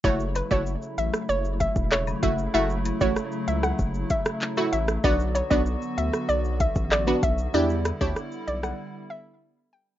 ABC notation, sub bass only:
X:1
M:4/4
L:1/16
Q:1/4=96
K:F#phr
V:1 name="Sub bass" clef=bass
F,,,3 F,,,2 z A,,, z F,,,3 E,,,3 F,,,2 | F,,,3 A,,, z2 C,,2 F,,,2 z4 A,,,2 | B,,,3 B,,,2 z D,, z B,,,3 A,,,3 B,,,2 | E,,3 D,, z2 B,,,2 z8 |]